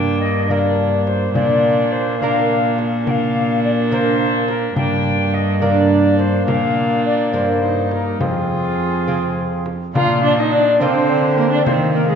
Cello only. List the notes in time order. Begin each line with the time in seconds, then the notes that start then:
Already playing: G2
1.35 A#2
4.77 G2
6.48 A#2
7.33 G2
8.21 F2
9.95 A#2
10.80 D3
11.66 D#3